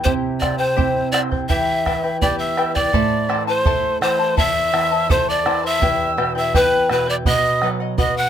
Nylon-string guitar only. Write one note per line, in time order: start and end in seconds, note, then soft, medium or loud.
0.05 1.45 C3 medium
0.77 1.47 C4 soft
0.77 1.47 E4 soft
0.77 1.47 G4 soft
1.49 2.89 E3 medium
2.21 2.91 B3 soft
2.21 2.91 E4 soft
2.21 2.92 G4 soft
2.93 4.33 A2 medium
3.29 3.64 E3 medium
3.65 4.00 A4 medium
4.01 4.36 E3 medium
4.37 5.78 E2 medium
4.73 5.08 E3 soft
5.10 5.45 A4 medium
5.46 5.81 E3 medium
5.82 7.22 E2 medium
6.17 6.52 B2 medium
6.54 6.89 B3 medium
6.90 7.25 B2 medium
7.26 8.29 B2 medium
7.62 7.97 F#3 soft
7.98 8.29 F#4 medium